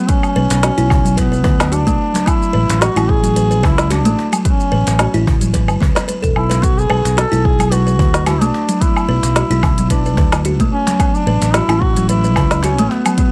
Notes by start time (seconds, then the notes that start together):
Already playing: B3
0.09 B3 C#4, kick, closed hi-hat, shaker
0.23 low woodblock, shaker
0.36 B1 B4
0.50 B1, cajon slap, closed hi-hat, shaker
0.63 F#4, snare, closed hi-hat, shaker
0.78 B1 E4, closed hi-hat, shaker
0.90 kick, cajon bass, low woodblock
1.05 F#3, closed hi-hat, shaker
1.17 B3 B4, kick, cajon slap, closed hi-hat, shaker
1.32 B4, shaker
1.44 D2 B4, cajon bass, kick
1.60 snare, cajon slap, closed hi-hat, low woodblock, shaker
1.72 D4 F#4, closed hi-hat, shaker
1.87 B1 A3, kick, closed hi-hat, shaker
2.14 F#3, cajon slap, closed hi-hat, shaker
2.26 B3 E4, kick, closed hi-hat, low woodblock, shaker
2.42 shaker
2.53 A1 B4
2.69 A1, cajon slap, closed hi-hat, shaker
2.81 F#4, snare, closed hi-hat, shaker
2.96 A1 E4, closed hi-hat, low woodblock, shaker
3.09 G#4, kick
3.23 F#3, closed hi-hat, shaker
3.36 B4, closed hi-hat, shaker
3.51 B4, shaker
3.63 C#2 E4 B4, kick, cajon bass, low woodblock
3.78 snare, closed hi-hat, shaker
3.90 D4 F#4, cajon slap, closed hi-hat, shaker
4.05 A1 A3, closed hi-hat, shaker
4.19 cajon slap
4.32 F#3, closed hi-hat, low woodblock, shaker
4.45 B3 C#4, kick, closed hi-hat, shaker
4.60 shaker
4.72 A1 B4
4.87 A1, cajon slap, closed hi-hat, shaker
4.99 F#4, snare, closed hi-hat, low woodblock, shaker
5.14 A1 E4, closed hi-hat, shaker
5.27 kick, cajon bass
5.41 F#3, closed hi-hat, shaker
5.54 B4, kick, cajon slap, closed hi-hat, shaker
5.68 B4, low woodblock, shaker
5.81 B3, kick, cajon bass
5.95 B4, snare, cajon slap, closed hi-hat, shaker
6.08 B4, closed hi-hat, shaker
6.23 E1 A4, kick, closed hi-hat, shaker
6.36 B1 E4, low woodblock
6.50 B4, cajon slap, closed hi-hat, shaker
6.62 B3 F#4, kick, closed hi-hat, shaker
6.78 G#4, shaker
6.90 B1 B4, low woodblock
7.05 B1, cajon slap, closed hi-hat, shaker
7.17 F#4 A4, snare, closed hi-hat, shaker
7.32 B1 E4, closed hi-hat, shaker
7.45 G#4, kick
7.59 F#3, closed hi-hat, low woodblock, shaker
7.71 F#4 B4, closed hi-hat, shaker
7.87 B4, shaker
7.99 D2 B4, cajon bass, kick
8.14 snare, closed hi-hat, shaker
8.26 E4 F#4, cajon slap, closed hi-hat, low woodblock, shaker
8.41 B1 A3 D4, closed hi-hat, shaker
8.54 cajon slap
8.69 F#3, closed hi-hat, shaker
8.81 B3 E4, kick, closed hi-hat, shaker
8.96 low woodblock, shaker
9.09 B1 B4
9.23 B1, cajon slap, closed hi-hat, shaker
9.36 F#4, snare, closed hi-hat, shaker
9.51 B1 E4, closed hi-hat, shaker
9.63 cajon bass, kick, low woodblock
9.78 F#3, closed hi-hat, shaker
9.90 D4 B4, kick, cajon slap, closed hi-hat, shaker
10.05 B4, shaker
10.17 D2 B4, cajon bass, kick
10.32 cajon slap, snare, closed hi-hat, low woodblock, shaker
10.45 F#4, closed hi-hat, shaker
10.60 B1 A3, kick, closed hi-hat, shaker
10.72 C#4
10.87 F#3, cajon slap, closed hi-hat, shaker
11.00 B3, kick, closed hi-hat, low woodblock, shaker
11.14 D4, shaker
11.27 A1 B4
11.42 A1, cajon slap, closed hi-hat, shaker
11.54 E4 F#4, snare, closed hi-hat, shaker
11.69 A1 E4, closed hi-hat, low woodblock, shaker
11.82 F#4, kick
11.96 F#3, closed hi-hat, shaker
12.09 E4 B4, closed hi-hat, shaker
12.24 B4, shaker
12.36 C#2 B4, cajon bass, kick, low woodblock
12.51 snare, closed hi-hat, shaker
12.63 C#4 F#4, cajon slap, closed hi-hat, shaker
12.78 A1 A3, closed hi-hat, shaker
12.91 B3, cajon slap
13.06 F#3, closed hi-hat, low woodblock, shaker
13.18 B3, kick, closed hi-hat, shaker